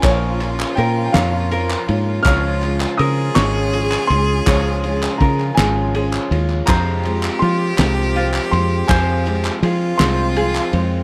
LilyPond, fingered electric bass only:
\new Staff \with { instrumentName = "Fingered electric bass" } { \clef bass \time 6/8 \key des \lydian \tempo 4. = 54 bes,,4 bes,8 f,4 aes,8 | des,4 des8 aes,,4 des,8 | des,4 des8 aes,,4 ees,8 | f,4 f8 c,4 f,8 |
f,4 f8 c,4 f,8 | }